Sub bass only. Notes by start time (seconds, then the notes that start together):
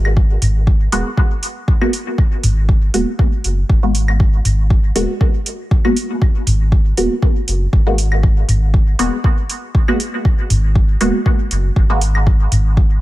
Already playing: G#1
0.42 G#1
0.92 D#1
2.43 G#1
2.94 D#1
3.44 F#1
3.69 G#1
4.45 G#1
4.96 D#1
6.47 G#1
6.97 D#1
7.48 F#1
7.73 G#1
8.49 G#1
8.99 D#1
10.50 G#1
11.01 D#1
11.51 F#1
11.76 G#1
12.52 G#1